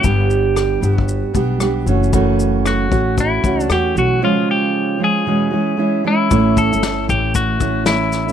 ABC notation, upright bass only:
X:1
M:4/4
L:1/16
Q:"Swing 16ths" 1/4=115
K:Amix
V:1 name="Upright bass" clef=bass
G,,,6 G,,,3 z B,,,4 F,,,2- | F,,,6 A,,,4 C,,2 E,,2 B,,,2 | z16 | A,,,3 G,,,3 A,,,8- A,,,2 |]